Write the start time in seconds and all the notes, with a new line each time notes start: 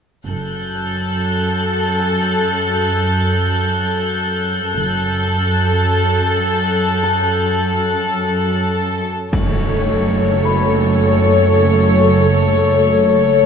0.28 F#1 F#2 A4 F#6 G6
1.99 G#5
4.77 F#1 F#2 A4
7.03 A4 A5
9.33 F#1 F#2 A3 A4 C#5, impact, triangle
10.45 B4 B5